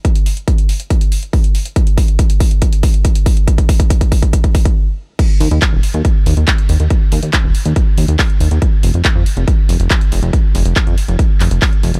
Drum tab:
CC |----------------|----------------|----------------|x---------------|
HH |xxoxxxoxxxoxoxox|xxoxxxoxxxoxxxox|xxoxxxoxxxox----|x-oxx-oxx-oxxxox|
CP |----------------|----------------|----------------|----x-------x---|
BD |o---o---o---o---|o-o-o-o-o-o-o-o-|oooooooooooo----|o---o---o---o---|

CC |----------------|----------------|----------------|
HH |x-oxx-oxx-oxoxox|x-oxx-oxx-oxxxox|x-oxxxoxx-oxoxox|
CP |----x-------x---|----x-------x---|----x-----x-x---|
BD |o---o---o---o---|o---o---o---o---|o---o---o---o---|